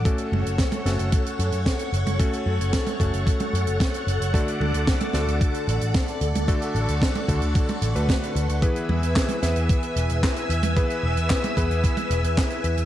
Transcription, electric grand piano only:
X:1
M:4/4
L:1/16
Q:1/4=112
K:F#m
V:1 name="Electric grand piano"
[A,CFA]6 [A,CFA]8- [A,CFA]2 | [A,CFA]6 [A,CFA]8- [A,CFA]2 | [D,A,DFA]6 [D,A,DFA]8- [D,A,DFA]2 | [D,A,DFA]6 [D,A,DFA]4- [D,A,DFA] [D,A,DFB]4- [D,A,DFB] |
[E,B,EGB]6 [E,B,EGB]8- [E,B,EGB]2 | [E,B,EGB]6 [E,B,EGB]8- [E,B,EGB]2 |]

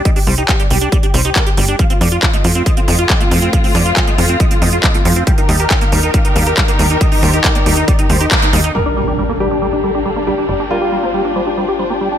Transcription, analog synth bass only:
X:1
M:4/4
L:1/8
Q:1/4=138
K:Gm
V:1 name="Analog synth bass" clef=bass
z C,, z C,, z C,, z G,,, | z F,, z F,, z F,, z F,, | z F,, z F,, z F,, z F,, | z E,, z E,, z E,, z E,, |
z E,, z E,, z E,, z E,, | G,,,8 | G,,,8 |]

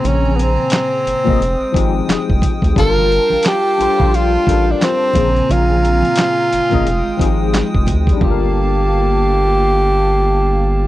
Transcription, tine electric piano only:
X:1
M:4/4
L:1/16
Q:"Swing 16ths" 1/4=88
K:Gphr
V:1 name="Tine electric piano"
[B,,_D,B,Ac]4 z3 [B,,B,_DAe] z2 [F,CEGA]4- [F,CEGA] z | [G,DFB=a]4- [G,DFBa] z [G,DF=Ac] [G,DFAc]2 z [G,DFAB]4 [B,,_D,B,_Ac]2- | [B,,_D,B,Ac]4 z3 [B,,B,_DAe] z2 [F,CEGA]4- [F,CEGA] z | [G,DF=AB]16 |]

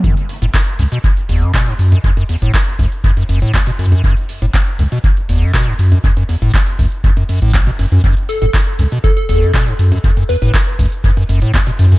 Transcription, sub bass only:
X:1
M:4/4
L:1/16
Q:1/4=120
K:F#m
V:1 name="Sub bass" clef=bass
F,,, z2 F,,, z2 C,, z3 F,,, z F,,, z F,, z | F,,, z2 F,,, z2 C,, z3 F,,, z F,,, z F,, z | F,,, z2 F,,, z2 C,, z3 F,,, z F,,, z F,, z | F,,, z2 F,,, z2 C,, z4 A,,,2 z F,,, F,, |
F,,, z2 F,,, z2 C,, z3 F,,, z F,,, z F,, z | F,,, z2 F,,, z2 C,, z3 F,,, z F,,, z F,, z |]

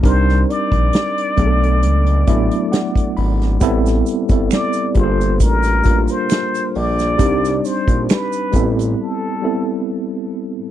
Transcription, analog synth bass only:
X:1
M:4/4
L:1/16
Q:"Swing 16ths" 1/4=67
K:Ador
V:1 name="Analog synth bass" clef=bass
C,,2 z _B,,, z2 =B,,,2 ^C,,2 A,,, z3 ^G,,,2 | A,,,2 z G,,, z2 G,,,2 A,,,2 A,,, z3 _B,,,2 | C,,2 z _B,,, z2 A,,,2 z8 |]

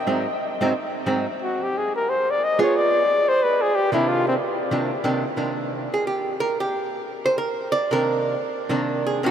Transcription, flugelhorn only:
X:1
M:4/4
L:1/8
Q:"Swing" 1/4=181
K:Cm
V:1 name="Flugelhorn"
z8 | _G =G A B c d e _d | d3 c =B A G =E | F C z6 |
z8 | z8 | z8 |]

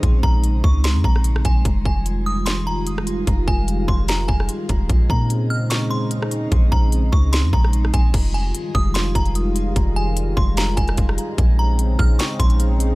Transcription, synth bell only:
X:1
M:4/4
L:1/8
Q:1/4=148
K:Fm
V:1 name="Synth bell"
z b2 d' c' b2 a | z a2 e' c' b z2 | z a2 c' b a z2 | z b2 f' d' c' z2 |
z b2 d' c' b2 a | z a2 e' c' b z2 | z a2 c' b a z2 | z b2 f' d' c' z2 |]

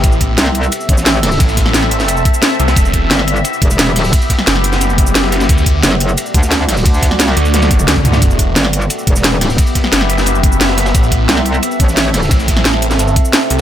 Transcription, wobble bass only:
X:1
M:4/4
L:1/8
Q:1/4=176
K:Em
V:1 name="Wobble bass" clef=bass
z2 C,,2 z A,,,3 | z8 | z2 G,,,2 z E,,,3 | z8 |
z2 F,,,2 z D,,3 | D,,3 z4 z | z2 G,,,2 z E,,,3 | z8 |
z2 C,,2 z A,,,3 | z8 |]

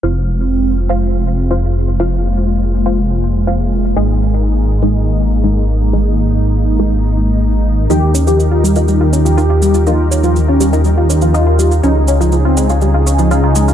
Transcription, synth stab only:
X:1
M:4/4
L:1/16
Q:1/4=122
K:Fm
V:1 name="Synth stab"
[Fcf]6- [Fcf] [Fcf] z4 [Fcf]4 | [Fcf]6- [Fcf] [Fcf] z4 [Fcf]4 | [A,EA]6- [A,EA] [A,EA] z4 [A,EA]4 | [A,EA]6- [A,EA] [A,EA] z8 |
[EBe]6- [EBe] [EBe] z4 [EBe]4 | [EBe]6- [EBe] [EBe] z4 [EBe]4 | [DAd]6- [DAd] [DAd] z4 [DAd]4 |]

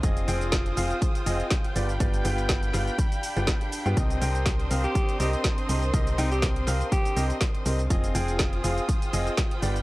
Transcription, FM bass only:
X:1
M:4/4
L:1/16
Q:"Swing 16ths" 1/4=122
K:Cm
V:1 name="FM bass" clef=bass
F,,,2 F,,,4 F,,, z3 F,,, z3 G,,,2 | G,,,2 G,,,4 G,,, z4 G,,, z3 G,, | C,,2 C,,4 C,, z3 C,, z3 C,,2 | C,,2 C,,4 C,, z3 C,, z3 C,,2 |
F,,,2 F,,,4 F,,, z3 F,,, z3 G,,,2 |]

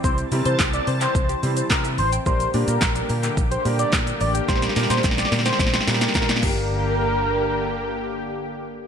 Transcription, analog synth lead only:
X:1
M:4/4
L:1/16
Q:1/4=108
K:Gdor
V:1 name="Analog synth lead"
c z2 c z d z c3 z2 B z c z | c2 z B3 z3 c z d z2 d z | c z2 c z d z c3 z2 B z B2- | B12 z4 |]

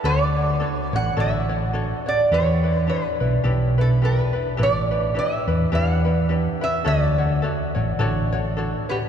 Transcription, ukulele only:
X:1
M:4/4
L:1/8
Q:"Swing" 1/4=106
K:D
V:1 name="Ukulele"
[DFAc] [DFc] [DFAc] [DFc] [DFAc] [DFc] [DFAc] [DFc] | [DEGB] [DEB] [DEGB] [DEB] [DEGB] [DEB] [DEGB] [DEB] | [DEGB] [DEB] [DEGB] [DEB] [DEGB] [DEB] [DEGB] [DEB] | [DFAc] [DFc] [DFAc] [DFc] [DFAc] [DFc] [DFAc] [DFc] |]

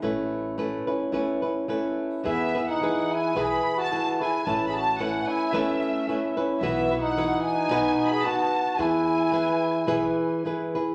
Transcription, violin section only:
X:1
M:4/4
L:1/16
Q:"Swing" 1/4=110
K:A
V:1 name="Violin section"
z16 | [K:E] e3 f3 g2 b3 a3 g2 | a3/2 b/2 a2 f2 g2 e6 z2 | e3 f3 g4- g b a4 |
g12 z4 |]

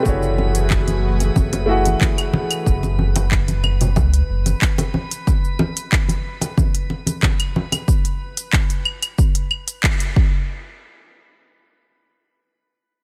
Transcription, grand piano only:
X:1
M:4/4
L:1/8
Q:1/4=92
K:F#m
V:1 name="Grand piano"
[A,EFGc]4- [A,EFGc] [A,EFGf]3 | z8 | z8 | z8 |
z8 |]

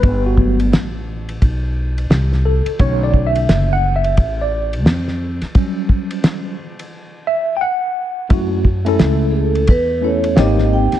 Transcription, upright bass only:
X:1
M:4/4
L:1/16
Q:"Swing 16ths" 1/4=87
K:Edor
V:1 name="Upright bass" clef=bass
G,,,4 A,,,4 B,,,4 =C,,3 z | B,,,4 F,,,4 A,,,4 =F,,3 z | z16 | F,,4 C,,4 E,,4 ^G,,,3 z |]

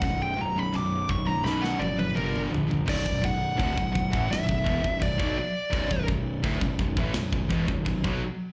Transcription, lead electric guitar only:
X:1
M:4/4
L:1/16
Q:1/4=84
K:Bm
V:1 name="Lead electric guitar"
f g ^a b d'2 c' a b f d B ^A2 z2 | d2 f6 e4 d2 d2- | d2 z12 z2 |]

